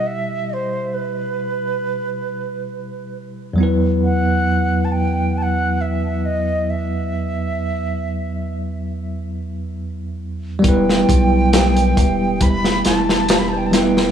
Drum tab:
HH |----------------|----------------|----------------|x-x-xxx-x-x-x-x-|
SD |----------------|----------------|----------------|-o--o----oooo-oo|
BD |----------------|----------------|----------------|o-o---o-o-------|